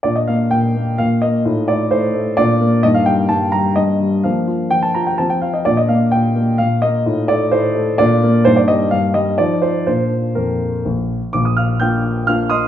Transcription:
<<
  \new Staff \with { instrumentName = "Grand piano" } { \time 3/4 \key bes \major \tempo 4 = 128 << { d''16 ees''16 f''8 g''4 f''8 ees''8~ | ees''8 d''8 c''4 d''4 | ees''16 f''16 g''8 a''8 bes''8 ees''4 | f''4 g''16 a''16 bes''16 g''16 a''16 g''16 f''16 ees''16 |
d''16 ees''16 f''8 g''4 f''8 ees''8~ | ees''8 d''8 c''4 d''4 | c''16 d''16 ees''8 f''8 ees''8 d''8 c''8 | c''4 bes'4 r4 |
d'''16 ees'''16 <f'' f'''>8 <g'' g'''>4 <f'' f'''>8 <ees'' c''' ees'''>8 | } \\ { <d' f'>2. | <ees' f'>2 <d' f'>4 | <bes ees'>2. | <bes d'>2 <c' f'>4 |
<d' f'>2. | <ees' f'>2 <d' f'>4 | <bes ees'>2 <ees' f'>4 | r2. |
r2. | } >> }
  \new Staff \with { instrumentName = "Grand piano" } { \clef bass \time 3/4 \key bes \major bes,8 bes8 bes,8 bes8 bes,8 bes8 | a,8 a8 a,8 a8 bes,8 bes8 | g,8 g8 g,8 g8 g,8 g8 | f8 f'8 f8 f'8 f8 f'8 |
bes,8 bes8 bes,8 bes8 bes,8 bes8 | a,8 a8 a,8 a8 bes,8 bes8 | g,8 g8 g,8 g8 f8 f'8 | <bes, d' f'>4 f,4 bes,,4 |
<bes,, bes,>4 <bes d' f'>4 <bes d' f'>4 | }
>>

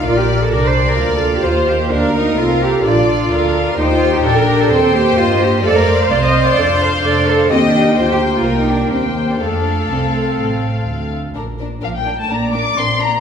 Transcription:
<<
  \new Staff \with { instrumentName = "Violin section" } { \time 4/4 \key bes \major \tempo 4 = 128 d''4 d''4 f''2 | f''4 f''4 d''4 f''4 | g''2 g''4 ees''4 | f''2 f''2 |
g''2 g''4 g''4 | f''2.~ f''8 r8 | r4 f''16 g''8 a''16 bes''8 d'''8 c'''8 bes''8 | }
  \new Staff \with { instrumentName = "Violin section" } { \time 4/4 \key bes \major d''4 d''2 c''4 | bes'2 d''4 bes'4 | c''4 bes'4 c''2 | d''4 c''2. |
ees''4 c''4 bes'4 c''4 | a'2.~ a'8 r8 | <d' bes'>8 <d' bes'>8 <d' bes'>8 <d' bes'>8 <d' bes'>8 <d' bes'>8 <d' bes'>8 <d' bes'>8 | }
  \new Staff \with { instrumentName = "Cello section" } { \time 4/4 \key bes \major f'16 g'8 a'16 bes'16 c''8 bes'8 a'8 g'16 f'8 g'8 | d'8 ees'8 f'8 g'8 f'2 | ees'16 f'8 g'16 a'16 bes'8 a'8. g'8 f'8 g'8 | a'16 bes'8 c''16 d''16 ees''8 d''8. c''8 d''8 a'8 |
c'16 d'8 ees'16 f'16 g'8 f'8 ees'16 d'8 c'16 bes8 d'16 | d'4 c'2~ c'8 r8 | r4 f16 g8 a16 bes8 d'8 c'8 bes8 | }
  \new Staff \with { instrumentName = "Viola section" } { \time 4/4 \key bes \major << { bes'4 g'4 f'4 c''4 | bes'4 a'2. | g'2 c''2 | c''2 a'8 a'8 a'4 |
g'2 g'2 | a'2.~ a'8 r8 | r2 d''2 | } \\ { f'4 d'4 bes4 bes4~ | bes4 c'4 d'2 | ees'4 d'4 c'8 bes4. | a4 c'4 d'4 d'4 |
bes1 | a2.~ a8 r8 | r1 | } >> }
  \new Staff \with { instrumentName = "Double bass section" } { \clef bass \time 4/4 \key bes \major bes,,4 c,4 d,4 ees,4 | d,4 c,4 bes,,4 d,4 | ees,4 bes,,4 ees,4 g,4 | f,4 c,4 f,4 f,,4 |
ees,4 d,4 c,4 ees,4 | f,4 c,4 a,,4 d,4 | bes,,4 bes,,4 bes,,4 bes,,4 | }
>>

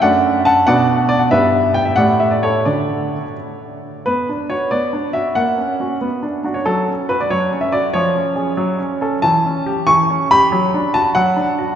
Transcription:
\new Staff \with { instrumentName = "Grand piano" } { \time 6/8 \key d \major \tempo 4. = 93 << { <d'' fis''>4 <fis'' a''>8 <d'' fis''>4 d''16 fis''16 | <b' e''>4 g''16 e''16 <d'' fis''>8 e''16 d''16 <a' cis''>8 | <a' d''>4. r4. | \key b \minor b'4 cis''8 d''4 e''8 |
fis''2~ fis''8. cis''16 | a'4 b'16 d''16 cis''8. e''16 d''8 | cis''2. | \key d \major a''4. cis'''4 b''8~ |
b''4 a''8 fis''4. | } \\ { <fis, a d' fis'>4. <b, b d' fis'>4. | <g, b e' g'>4. <a, a e' g'>4. | <d d' fis'>4. r4. | b8 d'8 fis'8 b8 d'8 fis'8 |
ais8 cis'8 <cis' fis'>8 b8 d'8 <d' fis'>8 | fis8 cis'8 fis'8 fis8 cis'8 fis'8 | eis8 cis'8 <cis' gis'>8 fis8 cis'8 <cis' a'>8 | e8 cis'8 g'8 e8 cis'8 g'8 |
fis8 d'8 fis'8 fis8 d'8 fis'8 | } >> }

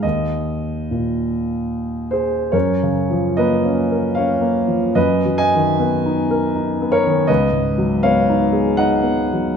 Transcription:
<<
  \new Staff \with { instrumentName = "Grand piano" } { \time 3/4 \key c \minor \tempo 4 = 75 ees''2~ ees''8 <aes' c''>8 | \key fis \major <ais' cis''>4 <b' dis''>4 <cis'' eis''>4 | <b' dis''>8 <dis'' gis''>4. r8 <ais' cis''>8 | <b' dis''>4 <cis'' eis''>4 <dis'' fis''>4 | }
  \new Staff \with { instrumentName = "Grand piano" } { \time 3/4 \key c \minor ees,4 bes,2 | \key fis \major \tuplet 3/2 { fis,8 cis8 eis8 ais8 cis'8 ais'8 cis'8 ais8 eis8 } | \tuplet 3/2 { fis,8 fis8 dis8 b8 dis'8 ais'8 dis'8 b8 dis8 } | \tuplet 3/2 { cis,8 gis,8 fis8 b8 dis'8 gis'8 dis'8 b8 fis8 } | }
>>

